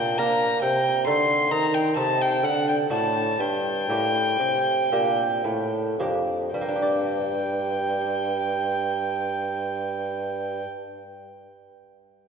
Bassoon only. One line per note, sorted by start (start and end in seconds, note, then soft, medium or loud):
0.00 0.18 A#2 medium
0.19 0.61 A#3 medium
0.62 1.06 C3 medium
1.07 1.53 D3 medium
1.51 1.99 D#3 medium
1.97 2.45 C3 medium
2.44 2.90 D3 medium
2.91 3.39 A2 medium
3.39 3.88 G2 medium
3.88 4.38 A2 medium
4.39 4.90 C3 medium
4.92 5.44 A#2 medium
5.44 5.97 A2 medium
5.98 6.52 F2 medium
6.53 10.62 G2 medium